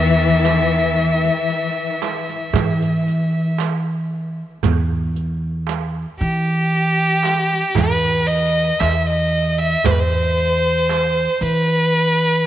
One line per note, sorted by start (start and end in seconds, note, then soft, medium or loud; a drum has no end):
0.00 1.28 E2 medium
0.00 3.54 E3 loud
0.00 3.58 E5 medium
0.45 riq soft
0.45 darbuka tek medium
0.98 riq soft
0.98 darbuka ka soft
1.24 riq soft
1.24 darbuka ka soft
1.50 riq soft
1.50 darbuka ka soft
2.02 riq soft
2.02 darbuka tek medium
2.28 riq soft
2.28 darbuka ka soft
2.53 4.41 E3 medium
2.53 riq medium
2.53 darbuka dum medium
2.81 riq soft
2.81 darbuka ka soft
3.07 riq soft
3.07 darbuka ka soft
3.58 riq soft
3.58 darbuka tek medium
4.11 darbuka ka soft
4.63 6.04 E2 medium
4.63 riq medium
4.63 darbuka dum medium
5.15 riq soft
5.15 darbuka ka soft
5.67 riq soft
5.67 darbuka tek medium
6.19 7.61 E3 medium
6.19 7.76 G4 medium
6.19 riq soft
6.19 darbuka ka soft
6.46 darbuka ka soft
6.72 darbuka ka soft
7.23 riq soft
7.23 darbuka tek medium
7.53 riq soft
7.75 8.70 E2 medium
7.75 8.28 B4 medium
7.75 riq medium
7.75 darbuka dum medium
8.27 8.81 D#5 medium
8.80 9.74 E2 medium
8.80 8.99 E5 medium
8.80 riq soft
8.80 darbuka tek medium
8.99 9.08 E5 medium
9.07 9.60 D#5 medium
9.32 darbuka ka soft
9.59 9.87 E5 medium
9.84 11.26 E2 medium
9.84 9.92 C5 medium
9.84 riq medium
9.84 darbuka dum medium
9.91 10.01 B4 medium
10.00 11.43 C5 medium
10.37 riq soft
10.37 darbuka ka soft
10.89 riq soft
10.89 darbuka tek medium
11.41 12.46 E3 medium
11.41 12.46 B4 medium
11.41 riq soft
11.41 darbuka ka soft
11.68 darbuka ka soft
11.95 darbuka ka soft